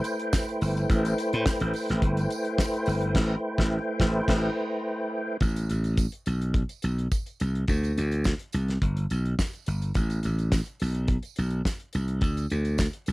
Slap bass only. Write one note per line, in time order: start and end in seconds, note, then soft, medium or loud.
0.62 0.85 G1 loud
0.90 1.13 A1 loud
1.33 1.44 A2 medium
1.61 1.72 A1 medium
1.90 2.00 A1 medium
2.03 2.25 G1 loud
2.87 3.15 G1 medium
3.15 3.35 A1 medium
3.59 3.78 A1 loud
4.00 4.20 A1 loud
4.28 4.48 A1 loud
5.41 5.64 A1 medium
5.70 6.05 A1 medium
6.27 6.62 B1 medium
6.84 7.07 B1 medium
7.41 7.64 C2 medium
7.69 7.92 D2 medium
7.98 8.33 D2 medium
8.54 8.77 C2 medium
8.82 9.05 G1 loud
9.11 9.34 B1 medium
9.68 9.91 G1 medium
9.96 10.19 A1 medium
10.25 10.60 A1 medium
10.81 11.16 B1 medium
11.38 11.61 B1 medium
11.95 12.22 C2 medium
12.22 12.45 D2 medium
12.51 12.86 D2 medium
13.08 13.12 C2 medium